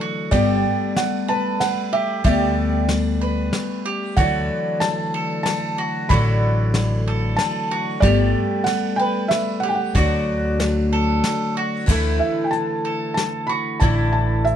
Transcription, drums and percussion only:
0.32 kick medium
0.32 ride soft
0.96 snare medium
0.96 ride soft
1.61 snare medium
1.61 ride soft
2.24 kick medium
2.24 ride soft
2.89 snare medium
2.89 ride soft
3.53 snare medium
3.53 ride soft
4.17 kick medium
4.17 ride soft
4.81 snare medium
4.81 ride soft
5.46 snare medium
5.46 ride soft
6.10 kick medium
6.10 ride soft
6.74 snare medium
6.74 ride soft
7.38 snare medium
7.38 ride medium
8.02 kick medium
8.02 ride soft
8.66 snare medium
8.66 ride soft
9.31 snare medium
9.31 ride soft
9.95 kick medium
9.95 ride soft
10.60 snare medium
10.60 ride soft
11.24 snare medium
11.24 ride soft
11.88 kick medium
11.88 crash medium
12.53 closed hi-hat soft
13.17 snare medium
13.17 closed hi-hat soft
13.81 kick medium
13.81 closed hi-hat soft
14.47 closed hi-hat soft

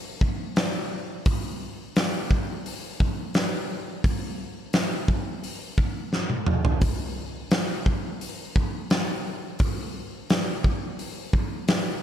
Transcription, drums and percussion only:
0.21 kick medium
0.56 snare loud
0.56 open hi-hat medium
1.26 kick loud
1.26 open hi-hat medium
1.96 snare loud
1.96 open hi-hat medium
2.31 kick medium
2.66 open hi-hat medium
3.00 kick medium
3.34 snare loud
3.34 open hi-hat medium
4.04 kick loud
4.04 open hi-hat medium
4.73 snare loud
4.73 open hi-hat medium
5.08 kick medium
5.44 open hi-hat medium
5.78 kick medium
6.13 snare medium
6.30 high tom medium
6.46 mid tom medium
6.65 floor tom medium
6.81 kick loud
6.81 open hi-hat medium
7.51 snare loud
7.51 open hi-hat medium
7.86 kick medium
8.21 open hi-hat medium
8.56 kick medium
8.90 snare loud
8.90 open hi-hat medium
9.59 kick loud
9.59 open hi-hat medium
10.30 snare loud
10.30 open hi-hat medium
10.64 kick medium
10.99 open hi-hat medium
11.33 kick medium
11.68 snare loud
11.68 open hi-hat medium

